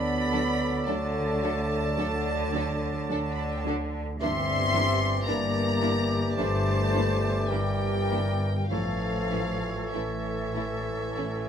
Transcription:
0.00 0.75 D2 medium
0.00 0.74 D3 medium
0.00 3.94 F#3 medium
0.00 0.84 B3 medium
0.00 3.90 A4 medium
0.00 0.85 D5 medium
0.00 3.95 D5 medium
0.00 0.87 B5 loud
0.32 0.41 F#3 medium
0.32 0.40 D4 medium
0.32 0.41 D4 medium
0.32 0.40 A4 medium
0.86 1.85 D2 medium
0.86 1.84 D3 medium
0.86 0.96 F#3 medium
0.86 3.65 A3 medium
0.86 0.95 D4 medium
0.86 0.96 D4 medium
0.86 0.95 A4 medium
0.86 3.62 D5 medium
0.86 3.32 A5 medium
1.43 1.51 F#3 medium
1.43 1.51 D4 medium
1.43 1.52 A4 medium
1.97 2.97 D2 medium
1.97 2.97 D3 medium
1.97 2.05 F#3 medium
1.97 2.05 D4 medium
1.97 2.07 D4 medium
1.97 2.07 A4 medium
2.53 2.61 F#3 medium
2.53 2.61 D4 medium
2.53 2.64 A4 medium
2.57 2.65 D4 medium
3.09 4.08 D2 medium
3.09 4.08 D3 medium
3.09 3.17 F#3 medium
3.09 3.17 D4 medium
3.09 3.20 D4 medium
3.09 3.19 A4 medium
3.34 3.41 B5 medium
3.42 3.50 A5 medium
3.52 3.59 G5 medium
3.59 3.67 A5 medium
3.65 3.73 F#3 medium
3.65 3.73 D4 medium
3.65 3.76 D4 medium
3.65 3.75 A4 medium
4.19 5.16 G1 medium
4.19 5.15 G2 medium
4.19 4.28 E3 medium
4.19 8.67 E3 medium
4.19 4.29 A#3 medium
4.19 5.24 C4 loud
4.19 4.29 D4 medium
4.19 4.30 E4 medium
4.19 8.66 G4 medium
4.19 8.66 D5 medium
4.19 5.29 E5 loud
4.19 5.25 C6 loud
4.74 4.82 E3 medium
4.74 4.82 A#3 medium
4.74 4.83 D4 medium
4.74 4.83 E4 medium
5.26 6.24 G1 medium
5.26 6.23 G2 medium
5.26 5.36 E3 medium
5.26 6.36 A#3 medium
5.26 5.36 A#3 medium
5.26 5.36 D4 medium
5.26 5.36 E4 medium
5.26 6.35 D5 medium
5.26 6.37 A#5 medium
5.81 5.89 E3 medium
5.81 5.89 A#3 medium
5.81 5.90 D4 medium
5.81 5.90 E4 medium
6.36 7.37 G1 medium
6.36 7.37 G2 medium
6.36 6.45 E3 medium
6.36 7.50 A3 medium
6.36 6.45 A#3 medium
6.36 6.47 D4 medium
6.36 6.47 E4 medium
6.36 7.52 C5 medium
6.36 7.48 A5 loud
6.94 7.02 E3 medium
6.94 7.03 A#3 medium
6.94 7.02 D4 medium
6.94 7.04 E4 medium
7.49 8.57 G1 medium
7.49 8.56 G2 medium
7.49 7.60 E3 medium
7.49 8.71 G3 medium
7.49 7.60 A#3 medium
7.49 7.60 D4 medium
7.49 7.60 E4 medium
7.49 8.69 A#4 medium
7.49 8.70 G5 medium
8.10 8.19 E3 medium
8.10 8.18 A#3 medium
8.10 8.21 D4 soft
8.10 8.20 E4 medium
8.69 9.80 A1 medium
8.69 9.80 A2 medium
8.69 8.79 E3 medium
8.69 11.49 E3 medium
8.69 9.90 F3 medium
8.69 8.79 A3 medium
8.69 8.78 C#4 medium
8.69 8.79 E4 soft
8.69 9.91 A4 medium
8.69 11.49 A4 medium
8.69 11.49 C#5 medium
8.69 9.90 F5 medium
9.31 9.41 E3 soft
9.31 9.41 A3 soft
9.31 9.39 C#4 soft
9.31 9.39 E4 soft
9.93 11.02 A1 medium
9.93 11.03 A2 medium
9.93 10.03 E3 medium
9.93 11.49 E3 medium
9.93 10.02 A3 soft
9.93 10.02 C#4 medium
9.93 10.02 E4 soft
9.93 11.49 A4 medium
9.93 11.49 E5 medium
10.54 10.65 E3 medium
10.54 10.65 A3 soft
10.54 10.62 C#4 soft
10.54 10.62 E4 soft
11.17 11.49 A1 medium
11.17 11.49 A2 medium
11.17 11.26 E3 soft
11.17 11.26 A3 soft
11.17 11.25 C#4 medium
11.17 11.25 E4 medium

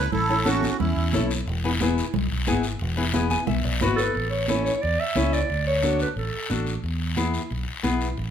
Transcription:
0.00 0.10 E4 medium
0.00 0.11 B4 loud
0.12 0.67 A1 loud
0.12 0.44 E4 medium
0.12 0.47 A4 loud
0.12 low conga medium
0.12 long guiro medium
0.30 0.35 C#4 medium
0.30 0.36 E4 medium
0.30 0.36 A4 medium
0.45 0.69 C#4 medium
0.45 0.78 C#4 medium
0.45 0.69 E4 medium
0.45 0.77 F#4 medium
0.45 0.70 A4 medium
0.45 high conga medium
0.45 short guiro medium
0.63 high conga medium
0.63 short guiro medium
0.79 0.94 E2 loud
0.79 1.26 C#4 medium
0.79 1.26 E4 medium
0.79 low conga medium
0.79 long guiro medium
0.97 1.15 E2 medium
1.13 1.40 B1 medium
1.13 1.31 C#4 medium
1.13 1.31 E4 medium
1.13 1.31 A4 medium
1.13 high conga medium
1.13 short guiro medium
1.31 short guiro medium
1.47 2.01 E1 loud
1.47 long guiro medium
1.64 1.70 B3 medium
1.64 1.70 E4 medium
1.64 1.70 G#4 medium
1.81 2.04 B3 medium
1.81 2.04 E4 medium
1.81 2.05 G#4 medium
1.81 high conga medium
1.81 short guiro medium
1.98 short guiro medium
2.14 2.27 B1 medium
2.14 low conga medium
2.14 long guiro medium
2.31 2.50 B1 medium
2.47 2.75 G#1 medium
2.47 2.65 B3 medium
2.47 2.65 E4 medium
2.47 2.65 G#4 loud
2.47 high conga medium
2.47 short guiro medium
2.63 short guiro medium
2.79 3.35 E1 loud
2.79 long guiro medium
2.97 3.03 B3 medium
2.97 3.03 E4 medium
2.97 3.03 G#4 medium
3.13 3.37 B3 medium
3.13 3.37 E4 medium
3.13 3.38 G#4 medium
3.13 high conga medium
3.13 short guiro medium
3.30 3.46 G#5 medium
3.30 high conga medium
3.30 short guiro medium
3.47 3.61 B1 medium
3.47 3.63 E5 medium
3.47 low conga medium
3.47 long guiro medium
3.64 3.83 B1 medium
3.64 3.80 D5 medium
3.81 4.08 G#1 medium
3.81 3.99 B3 medium
3.81 3.99 E4 medium
3.81 3.99 F#4 medium
3.81 3.97 B4 medium
3.81 high conga medium
3.81 short guiro medium
3.96 4.28 A4 medium
3.96 4.14 B4 medium
3.96 short guiro medium
4.14 4.69 A1 medium
4.14 high conga soft
4.14 long guiro medium
4.30 4.46 C#5 medium
4.48 4.72 C#4 medium
4.48 4.72 E4 medium
4.48 4.72 A4 medium
4.48 4.64 C#5 medium
4.48 high conga medium
4.48 short guiro medium
4.65 4.83 C#5 medium
4.65 short guiro medium
4.81 4.96 E2 medium
4.81 5.01 D5 medium
4.81 high conga soft
4.81 long guiro medium
5.00 5.35 E5 loud
5.16 5.43 C#2 medium
5.16 5.39 C#4 medium
5.16 5.39 E4 medium
5.16 5.39 A4 medium
5.16 high conga medium
5.16 short guiro medium
5.33 5.66 D5 loud
5.33 short guiro medium
5.49 6.04 D2 medium
5.49 high conga soft
5.49 long guiro medium
5.67 5.98 C#5 loud
5.83 6.06 D4 medium
5.83 6.06 F#4 medium
5.83 6.07 A4 medium
5.83 high conga medium
5.83 short guiro medium
5.99 6.09 B4 medium
5.99 short guiro medium
6.16 6.30 A1 medium
6.16 6.64 A4 medium
6.16 high conga soft
6.16 long guiro medium
6.50 6.77 A1 medium
6.50 6.73 D4 medium
6.50 6.73 F#4 medium
6.50 6.73 A4 medium
6.50 high conga medium
6.50 short guiro medium
6.67 short guiro medium
6.84 7.37 E2 medium
6.84 high conga soft
6.84 long guiro medium
7.17 7.40 B3 medium
7.17 7.40 E4 medium
7.17 7.41 G#4 medium
7.17 high conga medium
7.17 short guiro medium
7.34 short guiro medium
7.51 7.64 B1 medium
7.51 high conga soft
7.51 long guiro medium
7.83 8.11 B1 medium
7.83 8.07 B3 medium
7.83 8.08 E4 medium
7.83 8.08 G#4 medium
7.83 high conga medium
7.83 short guiro medium
8.01 short guiro medium
8.17 8.30 A1 medium
8.17 high conga soft
8.17 long guiro medium

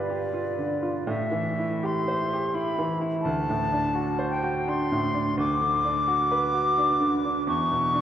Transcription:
0.00 1.04 G2 soft
0.00 0.58 D3 soft
0.00 0.33 F4 soft
0.00 0.10 G4 soft
0.00 0.26 B4 soft
0.00 1.08 D5 medium
0.10 0.49 G4 soft
0.33 0.73 F4 soft
0.58 0.98 D3 soft
0.83 1.08 F4 soft
1.07 3.20 A2 soft
1.07 1.87 E5 medium
1.32 1.74 E3 soft
1.59 1.99 E4 soft
1.83 2.23 G4 soft
1.83 2.56 C6 medium
2.08 2.46 C5 soft
2.33 2.70 G4 soft
2.54 2.91 E4 soft
2.54 3.00 B5 medium
2.79 3.15 E3 soft
3.01 3.24 E4 soft
3.22 5.35 D2 medium
3.22 4.26 A5 medium
3.49 3.86 A2 soft
3.72 4.09 D4 soft
3.95 4.34 F#4 soft
4.19 4.59 C5 soft
4.30 4.70 G5 medium
4.43 4.82 F#4 soft
4.67 5.06 D4 soft
4.67 5.38 C6 medium
4.92 5.29 A2 soft
5.14 5.38 D4 soft
5.37 7.43 D2 medium
5.37 7.44 D6 medium
5.61 5.98 D3 soft
5.84 6.22 D4 soft
6.08 6.45 F#4 soft
6.31 6.69 B4 soft
6.54 6.91 F#4 soft
6.78 7.15 D4 soft
7.00 7.38 D3 soft
7.25 7.48 D4 soft
7.47 8.01 E2 soft
7.47 8.01 C#6 medium
7.71 8.01 B2 soft
7.94 8.01 D4 soft

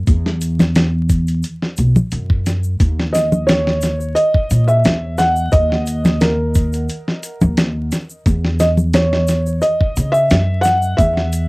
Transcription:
0.07 1.41 E2 loud
0.07 kick loud
0.07 closed hi-hat medium
0.07 shaker soft
0.26 snare soft
0.41 closed hi-hat medium
0.41 shaker medium
0.59 snare medium
0.59 low conga medium
0.59 shaker medium
0.75 snare loud
0.75 closed hi-hat loud
0.75 shaker soft
1.09 kick loud
1.09 closed hi-hat medium
1.09 shaker medium
1.27 closed hi-hat soft
1.27 shaker soft
1.43 closed hi-hat medium
1.43 shaker soft
1.62 snare soft
1.77 1.94 B1 medium
1.77 closed hi-hat medium
1.77 shaker medium
1.96 low conga medium
1.96 shaker soft
2.11 2.77 F#2 medium
2.11 closed hi-hat medium
2.11 shaker soft
2.30 kick medium
2.46 snare soft
2.46 closed hi-hat medium
2.46 shaker medium
2.63 shaker soft
2.80 4.14 D#2 medium
2.80 kick loud
2.80 closed hi-hat medium
2.80 shaker soft
3.00 snare soft
3.13 3.49 D#5 medium
3.13 snare soft
3.13 closed hi-hat medium
3.13 shaker medium
3.32 low conga medium
3.32 shaker medium
3.47 4.18 C#5 medium
3.47 snare loud
3.47 closed hi-hat medium
3.47 shaker soft
3.67 snare medium
3.81 snare soft
3.81 closed hi-hat medium
3.81 shaker medium
4.01 shaker soft
4.15 4.64 D#5 loud
4.15 closed hi-hat medium
4.15 shaker soft
4.34 kick medium
4.50 4.81 A#2 medium
4.50 closed hi-hat medium
4.50 shaker medium
4.67 5.20 E5 loud
4.67 shaker medium
4.84 5.50 E2 medium
4.84 snare loud
4.84 closed hi-hat medium
4.84 shaker soft
5.18 5.50 F#5 loud
5.18 snare soft
5.18 closed hi-hat medium
5.18 shaker medium
5.36 shaker medium
5.52 6.86 D#2 loud
5.52 6.23 D#5 loud
5.52 kick loud
5.52 closed hi-hat medium
5.52 shaker soft
5.72 snare soft
5.86 closed hi-hat medium
5.86 shaker medium
6.05 snare medium
6.05 low conga medium
6.05 shaker soft
6.21 7.53 A#4 medium
6.21 snare loud
6.21 closed hi-hat medium
6.21 shaker soft
6.54 kick loud
6.54 closed hi-hat medium
6.54 shaker loud
6.73 closed hi-hat soft
6.73 shaker medium
6.88 closed hi-hat medium
6.88 shaker soft
7.08 snare soft
7.23 closed hi-hat medium
7.23 shaker medium
7.41 7.89 D#2 medium
7.41 low conga medium
7.41 shaker medium
7.57 snare loud
7.57 closed hi-hat medium
7.57 shaker soft
7.91 snare soft
7.91 closed hi-hat medium
7.91 shaker medium
8.10 shaker medium
8.26 9.59 E2 loud
8.26 kick loud
8.26 closed hi-hat medium
8.26 shaker soft
8.45 snare soft
8.59 8.67 D#5 medium
8.59 snare medium
8.59 closed hi-hat medium
8.59 shaker medium
8.77 low conga medium
8.77 shaker medium
8.93 9.64 C#5 medium
8.93 snare loud
8.93 closed hi-hat medium
8.93 shaker soft
9.13 snare medium
9.27 snare soft
9.27 closed hi-hat medium
9.27 shaker medium
9.46 shaker medium
9.62 10.16 D#5 loud
9.62 closed hi-hat medium
9.62 shaker soft
9.81 kick loud
9.96 10.27 C#3 loud
9.96 closed hi-hat medium
9.96 shaker loud
10.12 10.60 E5 loud
10.12 shaker medium
10.30 10.96 F#2 medium
10.30 snare loud
10.30 closed hi-hat medium
10.30 shaker soft
10.61 10.98 F#5 loud
10.61 closed hi-hat medium
10.61 shaker loud
10.65 snare soft
10.82 shaker medium
10.97 11.48 E2 loud
10.97 11.48 E5 loud
10.97 kick loud
10.97 closed hi-hat medium
10.97 shaker soft
11.17 snare soft
11.32 closed hi-hat medium
11.32 shaker loud

